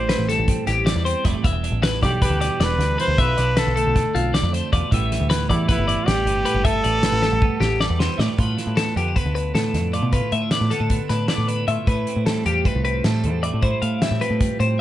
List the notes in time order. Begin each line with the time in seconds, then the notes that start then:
Already playing: A1 A2 G3 C4 G4 C5
0.09 E3 B4, snare, closed hi-hat
0.18 A1
0.29 G3 A4, snare, closed hi-hat
0.38 A1
0.48 C4, kick, closed hi-hat
0.67 A1 E2 G4, snare, closed hi-hat
0.86 G3 D5, snare, closed hi-hat
0.96 E2
1.05 C4 C5, closed hi-hat
1.24 F1 A2 E4 D5, kick, snare, closed hi-hat
1.33 G4
1.43 E1 E2 E4 E5, kick, closed hi-hat
1.53 G4
1.64 D4, closed hi-hat
1.72 A1
1.82 E3 B4, snare, closed hi-hat
2.02 B1 G3 G4 D5, kick, snare, closed hi-hat
2.22 D4 G4 B4, kick, closed hi-hat
2.30 D2
2.41 B2 D5, snare, closed hi-hat
2.60 E1 G3 B4 D5, snare, closed hi-hat
2.78 D2 D4, snare, closed hi-hat
2.98 E2 E4 B4 C5, closed hi-hat
3.08 D2 G4
3.18 B1 B2 F4 B4 E5, kick, closed hi-hat
3.38 B1 D4 D5, snare, closed hi-hat
3.57 D3 A4 B4, snare, closed hi-hat
3.67 B1
3.76 A3 A4, closed hi-hat
3.87 B1
3.95 D4, kick, snare, closed hi-hat
4.14 B1 F2 F4, closed hi-hat
4.34 G3 D5, snare, closed hi-hat
4.43 F2 A3
4.53 D4 C5, closed hi-hat
4.73 E2 B2 F4 D5, kick, closed hi-hat
4.91 A1 A2 E3 G3 B3 G4 E5, kick, closed hi-hat
5.12 B3, snare, closed hi-hat
5.20 D2
5.30 E3 B4, snare, closed hi-hat
5.50 E2 G3 E4 D5, kick, closed hi-hat
5.68 B3 E4 B4, kick, snare, closed hi-hat
5.78 G1
5.87 E2 D5, closed hi-hat
6.06 A1 G3 G4 D5, snare, closed hi-hat
6.25 G1 B3, closed hi-hat
6.45 A2 B3 B4, closed hi-hat
6.54 G1
6.65 A2 G4 A4 E5, kick, closed hi-hat
6.84 A1 B3 D5, closed hi-hat
7.03 E3 B4, snare, closed hi-hat
7.12 A1
7.22 G3 A4, snare
7.32 A1
7.42 B3, kick
7.60 A1 E2 G4, snare
7.80 G3 D5, snare
7.90 E2
7.99 B3 C5, snare
8.18 A2 E4 D5, snare
8.28 G4
8.37 A2 F4 B4, kick, closed hi-hat
8.58 D4, snare, closed hi-hat
8.67 A2
8.77 B3 A4, snare, closed hi-hat
8.96 F2 D3 B3 G4, closed hi-hat
9.08 D4
9.16 B3 B4, kick, closed hi-hat
9.25 D2
9.35 D4 B4, closed hi-hat
9.54 A2 B3 A4, snare, closed hi-hat
9.74 F2 D4, snare, closed hi-hat
9.93 A2 F4 D5, closed hi-hat
10.02 B2
10.13 A2 F4 B4, kick, closed hi-hat
10.32 A2 B3 E5, closed hi-hat
10.42 D4
10.51 B3 D5, snare, closed hi-hat
10.61 A2
10.70 D3 B3 A4, snare, closed hi-hat
10.80 A2 D4
10.90 B3, kick, closed hi-hat
11.09 A2 D4 B4, snare, closed hi-hat
11.28 A2 B3 D5, snare, closed hi-hat
11.38 A2
11.48 D4 B4, closed hi-hat
11.68 A2 F4 E5, closed hi-hat
11.87 A2 E4 B4, kick, closed hi-hat
12.07 C4, closed hi-hat
12.16 A2
12.26 G3 A4, snare, closed hi-hat
12.46 E2 F3 C4 G4, closed hi-hat
12.65 G3 B4, kick, closed hi-hat
12.75 C2
12.85 C4 B4, closed hi-hat
13.04 A2 G3 A4, snare, closed hi-hat
13.24 E2 C4, closed hi-hat
13.43 A2 E4 D5, closed hi-hat
13.54 A2
13.62 A2 E4 C5, kick, closed hi-hat
13.82 A2 C4 F5, closed hi-hat
14.02 G3 E5, snare, closed hi-hat
14.11 A2
14.21 F3 C4 B4, closed hi-hat
14.30 A2
14.40 G3, kick, closed hi-hat
14.60 A2 C4 C5, closed hi-hat